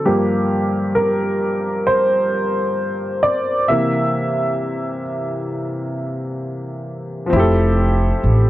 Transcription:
0.05 G2 F3 A#3 G4
0.95 A#4
1.87 C5
3.23 D5
3.68 C3 E3 A#3 E5
7.26 F3 C4
7.33 F1 E4 G4
7.39 A4
8.24 A1

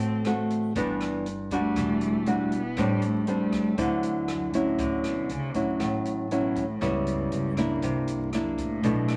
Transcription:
Already playing: A1 A2 A3 C4 F#4
0.00 closed hi-hat
0.25 A3 C4 F#4, cross-stick, closed hi-hat
0.50 closed hi-hat
0.75 G1 G2 E3 B3 D4, kick, closed hi-hat
1.01 cross-stick, closed hi-hat
1.26 closed hi-hat
1.51 G3 A3 D4 F#4, kick, closed hi-hat
1.76 E1 E3, kick, cross-stick, closed hi-hat
2.01 closed hi-hat
2.26 G3 D4 F#4, closed hi-hat
2.52 B3, closed hi-hat
2.77 A1 A2 G3 C4 D4, kick, cross-stick, closed hi-hat
3.02 A3, closed hi-hat
3.27 G3 C4 D4, closed hi-hat
3.52 kick, cross-stick, closed hi-hat
3.78 D2 D3 F#3 C4 E4, kick, closed hi-hat
4.03 closed hi-hat
4.28 F#2, cross-stick, closed hi-hat
4.53 A2 F#3 C#4 E4, closed hi-hat
4.78 D2 D3, kick, closed hi-hat
5.04 B2, cross-stick, closed hi-hat
5.29 D2 C#3, closed hi-hat
5.54 A2 F#3 C#4 E4, kick, closed hi-hat
5.80 A1 A2, kick, cross-stick, closed hi-hat
6.05 closed hi-hat
6.31 F#3 C#4 E4, closed hi-hat
6.35 B2
6.56 A2, kick, closed hi-hat
6.81 C#2 C#3 G3 B3 E4, kick, cross-stick, closed hi-hat
6.85 G2
7.07 G2, closed hi-hat
7.32 C#2, closed hi-hat
7.57 A#3 D4 E4, kick, cross-stick, closed hi-hat
7.82 C2 C3, kick, closed hi-hat
8.07 closed hi-hat
8.33 A#3 D4 E4, cross-stick, closed hi-hat
8.37 F#2
8.58 A2, kick, closed hi-hat
8.83 B1 B2 A3 D4 E4, kick, closed hi-hat
9.08 B2, cross-stick, closed hi-hat

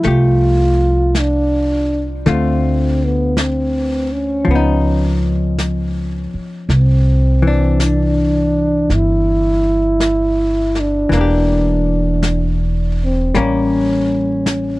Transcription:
Already playing: F3
0.03 C2 A3, brush sweep, snare
0.07 F4 G4
1.15 brush sweep, snare, hi-hat pedal
1.19 D4
2.26 D2 D3 A3 C4 F4, brush sweep, snare
3.05 B3
3.37 C4, brush sweep, snare, hi-hat pedal
4.13 C#4
4.45 C#2 F3, brush sweep
4.51 B3
4.55 D#4
5.58 brush sweep, snare, hi-hat pedal
6.34 muted upright bass stroke
6.69 C2, brush sweep, snare
6.74 C4
7.42 E3
7.47 D4
7.80 brush sweep, snare, hi-hat pedal
7.85 D4
8.90 G1, brush sweep, snare
8.95 E4
10.00 brush sweep, snare, hi-hat pedal
10.75 snare
10.80 D4
11.09 E1 E3 A#3, brush sweep, snare
11.17 D4 G4
12.23 brush sweep, snare, hi-hat pedal
13.04 C4
13.34 A1 G3 A#3 C#4, brush sweep, snare
13.42 C#4
14.46 brush sweep, snare, hi-hat pedal

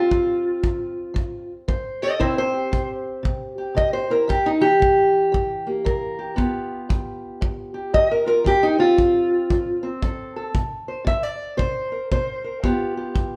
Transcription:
Already playing: C4 F4
0.11 F3, kick
0.63 F3, kick
1.14 F3, kick
1.68 F3 C5, kick
2.02 G4 A4 D#5
2.20 C3 C4 E4 C5, kick
2.38 C5
2.54 G4
2.72 C3, kick
3.23 C3, kick
3.58 G4
3.75 C3 D#5, kick
3.93 C5
4.10 E4 A#4
4.28 C3 G4, kick
4.46 D#4
4.61 E3 G4
4.79 C3, kick
5.32 C3, kick
5.67 A#3
5.85 C3 A#4, kick
6.19 G4
6.36 G2 B3 F4 G4, kick
6.89 G2, kick
7.41 G2, kick
7.74 G4
7.93 G2 D#5, kick
8.11 A#4
8.26 F4 A#4
8.44 F3 G4, kick
8.63 D#4
8.78 C4 F4
8.97 F3, kick
9.50 F3, kick
9.83 C4
10.02 F3 A4, kick
10.36 A4
10.55 C3, kick
10.88 C5
11.05 C3 E5, kick
11.23 D5
11.57 C3 C5, kick
11.92 A#4
12.11 C3 C5, kick
12.44 A#4
12.63 G2 B3 F4 G4, kick
12.97 G4
13.14 G2, kick

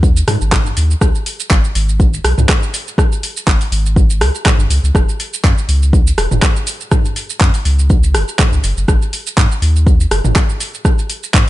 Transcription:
Already playing: D#2
0.03 kick, shaker
0.17 shaker
0.28 G#2, cross-stick, mid tom, open hi-hat, shaker
0.41 G#1, shaker
0.52 kick, cross-stick, clap, mid tom, shaker
0.66 shaker
0.77 D#2, open hi-hat, shaker
0.91 shaker
1.01 C#2, kick, cross-stick, shaker
1.15 shaker
1.26 open hi-hat, shaker
1.40 shaker
1.51 G#1, kick, clap, shaker
1.64 shaker
1.75 G#1, open hi-hat, shaker
1.89 shaker
2.00 kick, shaker
2.14 shaker
2.24 B1, cross-stick, open hi-hat, shaker
2.38 C#2, mid tom, shaker
2.49 kick, cross-stick, clap, shaker
2.63 shaker
2.74 open hi-hat, shaker
2.88 shaker
2.98 kick, cross-stick, shaker
3.12 shaker
3.23 open hi-hat, shaker
3.37 shaker
3.47 G#1, kick, clap, shaker
3.61 open hi-hat, shaker
3.72 G#1, open hi-hat, shaker
3.86 shaker
3.96 kick, shaker
4.10 shaker
4.21 C#2, cross-stick, open hi-hat, shaker
4.35 shaker
4.46 kick, cross-stick, clap, mid tom, shaker
4.59 G#1, shaker
4.70 C#2, open hi-hat, shaker
4.83 C#2, shaker
4.95 F#1, kick, cross-stick, shaker
5.09 shaker
5.20 open hi-hat, shaker
5.34 shaker
5.44 F#2, kick, clap, shaker
5.58 shaker
5.69 C#2, open hi-hat, shaker
5.83 shaker
5.93 kick, shaker
6.07 shaker
6.18 E1, cross-stick, open hi-hat, shaker
6.31 F#1, mid tom, shaker
6.42 kick, cross-stick, clap, shaker
6.56 shaker
6.67 open hi-hat, shaker
6.81 shaker
6.91 kick, cross-stick, mid tom, shaker
7.05 shaker
7.16 open hi-hat, shaker
7.30 shaker
7.41 F#2, kick, clap, shaker
7.54 open hi-hat, shaker
7.65 C#2, open hi-hat, shaker
7.79 shaker
7.90 kick, shaker
8.04 shaker
8.14 F#1, cross-stick, open hi-hat, shaker
8.28 shaker
8.39 kick, cross-stick, clap, mid tom, shaker
8.52 C#2, shaker
8.64 F#1, open hi-hat, shaker
8.77 F#1, shaker
8.88 G#1, kick, cross-stick, shaker
9.02 shaker
9.13 open hi-hat, shaker
9.27 shaker
9.37 G#2, kick, clap, shaker
9.52 shaker
9.62 D#2, open hi-hat, shaker
9.76 shaker
9.87 kick, shaker
10.01 shaker
10.11 F#1, cross-stick, open hi-hat, shaker
10.25 G#1, mid tom, shaker
10.36 kick, cross-stick, clap, shaker
10.50 shaker
10.60 open hi-hat, shaker
10.74 shaker
10.85 kick, cross-stick, shaker
10.99 shaker
11.10 open hi-hat, shaker
11.23 shaker
11.34 G#2, kick, clap, shaker

